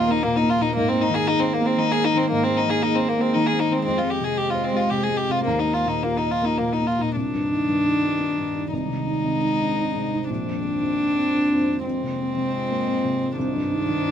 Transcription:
0.00 0.71 D#2 medium
0.00 0.24 A#2 medium
0.00 0.08 A#3 medium
0.00 0.72 A#3 medium
0.00 3.85 A#3 medium
0.00 0.12 F4 medium
0.00 0.75 F4 medium
0.00 0.77 F4 medium
0.00 0.75 A#4 medium
0.00 0.17 D#5 medium
0.08 0.34 A#3 medium
0.08 0.24 D#4 medium
0.23 0.51 A#2 medium
0.23 0.37 A#3 medium
0.36 0.51 D#4 medium
0.42 0.68 A#3 medium
0.49 0.63 F4 medium
0.59 0.75 A#2 medium
0.59 0.74 D#4 medium
0.75 2.26 G#2 medium
0.75 3.81 A#3 medium
0.75 0.90 A#3 medium
0.75 3.85 G#4 medium
0.75 5.46 C5 medium
0.88 1.02 C4 medium
0.93 1.20 A#3 medium
1.01 1.15 D#4 medium
1.09 1.37 D#3 medium
1.14 1.29 G#4 medium
1.26 1.41 D#4 medium
1.26 1.54 G#4 medium
1.39 1.54 C4 medium
1.39 1.71 C5 medium
1.53 1.67 A#3 medium
1.60 1.88 A#3 medium
1.66 1.79 C4 medium
1.77 2.05 D#3 medium
1.77 1.93 D#4 medium
1.91 2.06 G#4 medium
1.96 2.23 A#3 medium
2.04 2.18 D#4 medium
2.13 2.41 D#3 medium
2.13 2.30 C4 medium
2.30 3.82 G#2 medium
2.30 2.44 A#3 medium
2.43 2.58 C4 medium
2.49 2.76 A#3 medium
2.57 2.71 D#4 medium
2.67 2.93 D#3 medium
2.67 2.84 G#4 medium
2.82 2.96 D#4 medium
2.82 3.10 G#4 medium
2.95 3.10 C4 medium
3.00 3.27 C5 medium
3.08 3.22 A#3 medium
3.18 3.44 A#3 medium
3.18 3.35 C4 medium
3.33 3.62 D#3 medium
3.33 3.48 D#4 medium
3.46 3.61 G#4 medium
3.52 3.79 A#3 medium
3.59 3.73 D#4 medium
3.70 3.86 D#3 medium
3.70 3.84 C4 medium
3.85 5.42 F2 medium
3.85 5.46 G#3 medium
3.85 5.43 G#3 medium
3.85 3.99 C4 medium
3.85 5.46 G4 medium
3.98 4.11 F4 medium
4.02 4.30 G#3 medium
4.10 4.25 G4 medium
4.20 4.48 C3 soft
4.20 4.39 G#4 medium
4.36 4.65 G4 medium
4.36 4.51 G4 medium
4.50 4.65 F4 medium
4.54 4.83 C5 medium
4.64 4.78 C4 medium
4.73 5.01 G#3 medium
4.73 4.91 F4 medium
4.89 5.20 C3 soft
4.89 5.05 G4 medium
5.03 5.18 G#4 medium
5.09 5.38 G#3 soft
5.16 5.32 G4 medium
5.29 5.46 C3 soft
5.29 5.44 F4 medium
5.44 7.11 D#2 medium
5.44 5.60 A#3 medium
5.44 6.91 A#3 medium
5.44 7.15 A#3 medium
5.44 7.15 F4 medium
5.44 7.15 A#4 medium
5.59 5.75 D#4 soft
5.66 5.95 A#3 soft
5.73 5.89 F4 medium
5.86 6.15 A#2 soft
5.86 6.04 D#4 soft
6.03 6.18 A#3 medium
6.03 6.33 F4 soft
6.17 6.32 D#4 soft
6.24 6.53 D#5 soft
6.31 6.46 F4 soft
6.42 6.71 A#3 soft
6.42 6.59 D#4 soft
6.58 6.89 A#2 soft
6.58 6.74 A#3 medium
6.73 6.88 D#4 soft
6.80 7.08 A#3 soft
6.86 7.03 F4 soft
6.99 7.16 A#2 soft
6.99 7.14 D#4 soft
7.14 8.69 C2 medium
7.14 10.25 D#3 medium
7.14 8.68 D#3 medium
7.14 8.68 G3 medium
7.14 8.69 D4 medium
7.14 8.68 D5 medium
7.34 7.61 G2 soft
7.52 7.79 D#4 soft
7.68 7.96 G2 soft
7.85 8.13 D#4 soft
8.03 8.20 D4 soft
8.19 8.47 D#4 soft
8.38 8.65 G2 soft
8.55 8.72 D#4 soft
8.71 10.25 C2 soft
8.71 10.29 G#3 medium
8.71 10.26 G#3 medium
8.71 10.25 D#4 medium
8.71 13.35 C5 medium
8.88 9.17 C3 soft
9.06 9.35 D#4 soft
9.24 9.53 C3 soft
9.41 9.70 D#4 soft
9.60 9.77 D4 soft
9.78 10.05 D#4 soft
9.96 10.23 C3 soft
10.13 10.29 D#4 soft
10.27 11.80 A#1 soft
10.27 11.83 A#3 medium
10.27 11.80 C4 medium
10.27 11.83 D4 medium
10.27 11.80 D4 medium
10.46 10.73 F2 soft
10.64 10.91 D4 soft
10.82 11.09 F2 soft
10.99 11.26 D4 soft
11.15 11.32 C4 soft
11.32 11.60 D4 soft
11.51 11.78 F2 soft
11.69 11.85 D4 soft
11.84 13.33 F2 medium
11.84 13.36 G#3 medium
11.84 13.32 G#3 medium
11.84 13.32 C4 medium
11.84 13.36 F4 medium
12.03 12.29 C3 soft
12.20 12.46 C4 soft
12.36 12.62 C3 soft
12.52 12.79 C4 soft
12.71 12.86 A#3 soft
12.87 13.13 C4 soft
13.04 13.30 C3 soft
13.21 13.37 C4 soft
13.36 14.11 C2 medium
13.36 14.11 D#3 medium
13.36 14.11 G3 medium
13.36 14.11 D4 medium
13.36 14.11 D5 medium
13.55 13.81 G2 soft
13.71 13.97 D#4 soft
13.88 14.11 G2 soft
14.05 14.11 D#4 soft

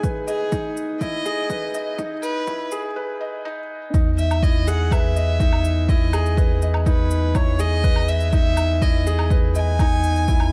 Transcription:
0.00 0.52 D#4 medium
0.00 1.01 E4 medium
0.00 1.26 G#4 loud
0.00 0.03 B4 medium
0.00 0.27 B4 medium
0.00 0.27 D#5 medium
0.00 kick loud
0.00 shaker soft
0.27 0.73 G#4 loud
0.27 0.51 D#5 medium
0.27 shaker medium
0.52 0.66 D#4 loud
0.52 kick loud
0.52 shaker soft
0.77 shaker medium
1.00 1.24 E4 medium
1.00 1.94 D#5 loud
1.00 kick loud
1.00 shaker soft
1.26 1.39 G#4 loud
1.26 shaker medium
1.50 1.73 B4 medium
1.50 kick loud
1.50 shaker soft
1.74 1.98 D#5 medium
1.74 shaker medium
1.98 2.12 D#4 loud
1.98 kick loud
1.98 shaker soft
2.23 2.68 B4 loud
2.23 shaker medium
2.47 2.71 E4 medium
2.47 kick loud
2.47 shaker soft
2.71 2.86 G#4 medium
2.71 shaker medium
2.96 3.19 B4 medium
3.21 3.44 D#5 medium
3.45 3.59 D#4 loud
3.94 10.52 E2 medium
3.94 4.08 D#4 loud
3.94 kick loud
3.94 shaker soft
4.18 4.44 E5 loud
4.18 shaker medium
4.31 low woodblock medium
4.31 shaker soft
4.43 4.66 E4 medium
4.43 4.69 D#5 loud
4.43 kick loud
4.43 shaker soft
4.67 4.81 G#4 loud
4.67 4.93 F#5 medium
4.67 shaker medium
4.91 5.15 B4 medium
4.91 5.90 E5 loud
4.91 kick loud
4.91 low woodblock medium
4.91 shaker soft
5.16 5.39 D#5 medium
5.16 shaker medium
5.40 5.54 D#4 medium
5.40 kick loud
5.40 shaker soft
5.53 low woodblock medium
5.65 shaker medium
5.89 6.12 E4 medium
5.89 6.62 D#5 medium
5.89 kick loud
5.89 shaker soft
6.13 6.27 G#4 loud
6.13 low woodblock medium
6.13 shaker medium
6.26 shaker soft
6.37 6.61 B4 medium
6.37 kick loud
6.37 shaker soft
6.62 6.85 D#5 medium
6.62 shaker medium
6.74 low woodblock medium
6.86 7.00 D#4 loud
6.86 7.37 B4 medium
6.86 kick loud
6.86 shaker soft
7.11 shaker medium
7.35 7.58 E4 medium
7.35 7.62 C#5 loud
7.35 kick loud
7.35 low woodblock medium
7.35 shaker soft
7.59 7.73 G#4 loud
7.59 8.11 D#5 loud
7.59 shaker medium
7.84 8.07 B4 medium
7.84 kick loud
7.84 shaker soft
7.96 low woodblock medium
8.08 8.32 D#5 medium
8.08 8.33 E5 loud
8.08 shaker medium
8.20 shaker soft
8.33 8.47 D#4 loud
8.33 8.84 E5 loud
8.33 kick loud
8.33 shaker soft
8.57 low woodblock medium
8.57 shaker medium
8.82 9.05 E4 medium
8.82 9.31 D#5 loud
8.82 kick loud
8.82 shaker soft
9.07 9.20 G#4 loud
9.07 shaker medium
9.19 low woodblock medium
9.30 9.54 B4 medium
9.30 kick loud
9.30 shaker soft
9.55 9.79 D#5 medium
9.55 10.52 G#5 loud
9.55 shaker medium
9.79 9.94 D#4 loud
9.79 kick loud
9.79 low woodblock medium
9.79 shaker soft
10.03 shaker medium
10.16 shaker soft
10.28 10.52 E4 medium
10.28 kick loud
10.28 shaker soft
10.40 low woodblock medium

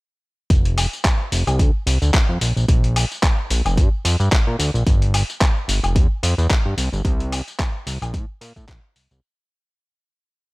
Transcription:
0.50 0.87 F1 medium
0.50 kick loud
0.50 closed hi-hat medium
0.50 tambourine soft
0.65 closed hi-hat medium
0.78 open hi-hat loud
0.78 tambourine medium
0.78 high woodblock medium
0.93 tambourine soft
1.05 kick loud
1.05 clap loud
1.05 closed hi-hat medium
1.05 tambourine soft
1.32 1.44 F1 medium
1.32 open hi-hat loud
1.32 tambourine medium
1.47 1.61 C2 medium
1.47 closed hi-hat medium
1.47 tambourine soft
1.47 high woodblock medium
1.59 1.71 D2 medium
1.59 kick loud
1.59 closed hi-hat medium
1.59 tambourine soft
1.87 1.98 C2 loud
1.87 open hi-hat loud
1.87 tambourine medium
2.02 2.11 D2 loud
2.02 closed hi-hat soft
2.02 tambourine soft
2.14 kick loud
2.14 clap loud
2.14 closed hi-hat medium
2.14 tambourine soft
2.29 2.38 F2 medium
2.41 2.53 A#1 medium
2.41 open hi-hat loud
2.41 tambourine medium
2.57 2.66 A#1 medium
2.57 tambourine soft
2.69 3.05 A#1 loud
2.69 kick loud
2.69 closed hi-hat medium
2.69 tambourine soft
2.84 closed hi-hat soft
2.96 open hi-hat loud
2.96 tambourine medium
2.96 high woodblock medium
3.12 tambourine soft
3.23 kick loud
3.23 clap loud
3.23 closed hi-hat medium
3.23 tambourine soft
3.50 3.62 A#1 medium
3.50 open hi-hat loud
3.50 tambourine medium
3.65 3.79 F1 medium
3.65 closed hi-hat medium
3.65 tambourine soft
3.65 high woodblock medium
3.77 3.89 G2 medium
3.77 kick loud
3.77 closed hi-hat medium
3.77 tambourine soft
4.05 4.16 F2 loud
4.05 open hi-hat loud
4.05 tambourine medium
4.20 4.29 G2 loud
4.20 closed hi-hat soft
4.20 tambourine soft
4.32 kick loud
4.32 clap loud
4.32 closed hi-hat medium
4.32 tambourine soft
4.47 4.56 A#2 medium
4.59 4.71 D2 medium
4.59 open hi-hat loud
4.59 tambourine medium
4.74 4.84 A#1 medium
4.74 tambourine soft
4.87 5.23 G1 loud
4.87 kick loud
4.87 closed hi-hat medium
4.87 tambourine soft
5.02 closed hi-hat medium
5.14 open hi-hat loud
5.14 tambourine medium
5.14 high woodblock medium
5.30 tambourine soft
5.41 kick loud
5.41 clap loud
5.41 closed hi-hat medium
5.41 tambourine soft
5.68 5.80 G1 medium
5.68 open hi-hat loud
5.68 tambourine medium
5.84 5.97 F1 medium
5.84 closed hi-hat medium
5.84 tambourine soft
5.84 high woodblock medium
5.96 6.07 E2 medium
5.96 kick loud
5.96 closed hi-hat medium
5.96 tambourine soft
6.23 6.35 F2 loud
6.23 open hi-hat loud
6.23 tambourine medium
6.38 6.47 E2 loud
6.38 closed hi-hat soft
6.38 tambourine soft
6.50 kick loud
6.50 clap loud
6.50 closed hi-hat medium
6.50 tambourine soft
6.66 6.75 G2 medium
6.78 6.89 C2 medium
6.78 open hi-hat loud
6.78 tambourine medium
6.93 7.02 G1 medium
6.93 tambourine soft
7.05 7.42 C2 loud
7.05 kick loud
7.05 closed hi-hat medium
7.05 tambourine soft
7.20 closed hi-hat soft
7.32 open hi-hat loud
7.32 tambourine medium
7.32 high woodblock medium
7.48 closed hi-hat soft
7.48 tambourine soft
7.59 kick loud
7.59 clap loud
7.59 closed hi-hat medium
7.59 tambourine soft
7.87 7.98 C2 medium
7.87 open hi-hat loud
7.87 tambourine medium
8.02 8.15 A#1 medium
8.02 closed hi-hat medium
8.02 tambourine soft
8.02 high woodblock medium
8.14 8.25 A2 medium
8.14 kick loud
8.14 closed hi-hat medium
8.14 tambourine soft
8.41 8.53 A#2 medium
8.41 open hi-hat loud
8.41 tambourine medium
8.56 8.65 A2 loud
8.56 kick medium
8.56 tambourine soft
8.68 8.80 A#1 medium
8.68 kick loud
8.68 clap loud
8.68 closed hi-hat medium
8.68 tambourine soft
8.96 9.08 C2 soft
8.96 open hi-hat loud
8.96 tambourine medium
9.11 9.20 C2 medium
9.11 closed hi-hat soft
9.11 tambourine soft

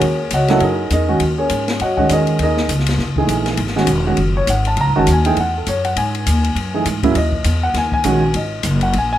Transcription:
0.00 0.30 D#2 medium
0.00 0.30 G#4 medium
0.00 0.30 A#4 medium
0.00 0.29 C#5 medium
0.00 ride medium
0.30 0.60 C#2 medium
0.30 0.50 D#5 medium
0.30 0.50 F#5 medium
0.30 hi-hat pedal medium
0.30 ride medium
0.35 0.50 F#4 medium
0.35 0.50 C#5 medium
0.48 0.60 F#3 medium
0.48 0.60 A#3 medium
0.48 0.60 E4 medium
0.48 0.62 F#4 medium
0.48 0.61 A4 medium
0.48 0.62 C#5 medium
0.48 0.61 D#5 medium
0.48 0.62 F#5 medium
0.48 snare soft
0.48 ride soft
0.60 0.90 F#2 medium
0.60 0.90 D#4 medium
0.60 0.90 G#4 medium
0.60 0.90 A#4 medium
0.60 0.90 D#5 medium
0.60 ride medium
0.90 1.19 E2 medium
0.90 1.20 D#4 medium
0.90 1.20 G#4 medium
0.90 1.20 A#4 medium
0.90 1.20 D#5 medium
0.90 hi-hat pedal medium
0.90 ride medium
1.09 1.20 D#3 medium
1.09 1.20 G#3 medium
1.09 1.20 C#4 medium
1.09 1.20 F#4 medium
1.20 1.49 D#2 medium
1.20 ride medium
1.38 1.77 C#4 medium
1.38 1.77 G#4 medium
1.38 1.78 A#4 medium
1.38 1.77 C#5 medium
1.50 1.79 G#2 medium
1.50 hi-hat pedal medium
1.50 ride medium
1.68 snare medium
1.68 ride soft
1.80 2.09 F#2 medium
1.80 1.97 F#4 medium
1.80 1.96 C#5 medium
1.80 1.96 D#5 medium
1.80 1.96 F#5 medium
1.80 ride medium
1.97 2.38 D#3 medium
1.97 2.38 G#3 medium
1.97 2.38 C#4 medium
1.97 2.10 F#4 medium
1.97 2.09 C#5 medium
1.97 2.10 D#5 medium
1.97 2.09 F#5 medium
1.97 kick soft
2.07 2.39 E2 medium
2.07 2.10 D5 soft
2.07 hi-hat pedal soft
2.07 ride medium
2.12 2.39 D#4 medium
2.12 2.39 G#4 medium
2.12 2.39 A#4 medium
2.12 2.39 D#5 medium
2.27 ride soft
2.39 2.68 D#2 medium
2.39 2.69 D#4 medium
2.39 2.69 A#4 medium
2.39 ride medium
2.43 2.69 G#4 medium
2.43 2.69 D#5 medium
2.57 snare soft
2.68 2.98 C#2 medium
2.68 hi-hat pedal medium
2.68 ride medium
2.79 snare soft
2.86 snare soft
2.86 ride medium
2.98 3.27 F#1 medium
2.98 snare soft
3.16 3.57 E3 medium
3.16 3.57 A3 medium
3.16 3.57 D#4 medium
3.16 3.57 G#4 medium
3.16 kick medium
3.27 3.57 A#1 medium
3.27 hi-hat pedal soft
3.27 ride medium
3.46 snare soft
3.46 ride soft
3.57 3.86 G#1 medium
3.57 ride medium
3.67 snare soft
3.76 3.87 D#3 medium
3.76 3.87 G#3 medium
3.76 3.87 C#4 medium
3.76 3.87 F#4 medium
3.76 snare soft
3.87 4.16 E1 medium
3.87 hi-hat pedal medium
3.87 ride medium
4.06 4.17 D#3 medium
4.06 4.17 G#3 medium
4.06 4.17 C#4 medium
4.06 4.17 F#4 medium
4.17 4.47 F#1 medium
4.17 ride medium
4.37 4.48 C#5 medium
4.47 4.76 G#1 medium
4.47 4.66 F#5 medium
4.47 hi-hat pedal medium
4.47 ride medium
4.65 4.78 A5 medium
4.65 ride soft
4.77 4.89 C#2 medium
4.77 ride medium
4.81 4.96 A#5 loud
4.87 4.97 G#1 medium
4.96 5.07 F#1 medium
4.96 5.06 D#3 medium
4.96 5.06 G#3 medium
4.96 5.06 C#4 medium
4.96 5.06 F#4 medium
4.96 5.09 A5 medium
5.07 5.36 D#2 medium
5.07 hi-hat pedal medium
5.07 ride medium
5.13 5.27 G#5 medium
5.25 5.36 E3 medium
5.25 5.36 A3 medium
5.25 5.36 D#4 medium
5.25 5.37 G#4 medium
5.25 5.37 G5 medium
5.25 ride medium
5.37 5.66 E2 medium
5.37 5.56 F#5 medium
5.37 ride medium
5.57 5.67 A4 medium
5.66 5.96 F#2 medium
5.66 5.85 C#5 medium
5.66 hi-hat pedal soft
5.66 ride medium
5.85 5.96 F#5 medium
5.85 ride soft
5.96 6.25 G#2 medium
5.96 6.82 G#5 medium
5.96 ride medium
6.15 ride soft
6.26 6.55 D#2 medium
6.26 hi-hat pedal medium
6.26 ride medium
6.44 ride soft
6.55 6.84 F#2 medium
6.55 ride medium
6.74 6.85 E3 medium
6.74 6.85 A3 medium
6.74 6.85 D#4 medium
6.74 6.85 G#4 medium
6.85 7.14 G#2 medium
6.85 hi-hat pedal medium
6.85 ride medium
7.03 7.14 C#3 medium
7.03 7.14 F#3 medium
7.03 7.14 A#3 medium
7.03 7.14 E4 medium
7.03 kick medium
7.03 ride soft
7.15 7.44 D#2 medium
7.15 7.60 D#5 medium
7.15 ride medium
7.32 kick soft
7.44 7.73 E2 medium
7.44 hi-hat pedal medium
7.44 ride medium
7.63 7.75 F#5 medium
7.74 8.03 D#2 medium
7.74 7.92 G#5 medium
7.74 snare soft
7.74 ride medium
7.92 8.32 G#5 medium
7.92 kick medium
8.04 8.33 A#1 medium
8.04 8.21 D#3 medium
8.04 8.21 G#3 medium
8.04 8.21 C#4 medium
8.04 8.21 F#4 medium
8.04 hi-hat pedal medium
8.04 ride medium
8.34 8.63 G#1 medium
8.34 8.79 D#5 medium
8.34 ride medium
8.63 8.92 F#1 medium
8.63 hi-hat pedal medium
8.63 ride medium
8.81 8.94 F#5 medium
8.81 ride soft
8.93 9.18 A#1 medium
8.93 ride medium
8.98 9.11 G#5 medium
9.13 9.18 G#5 medium

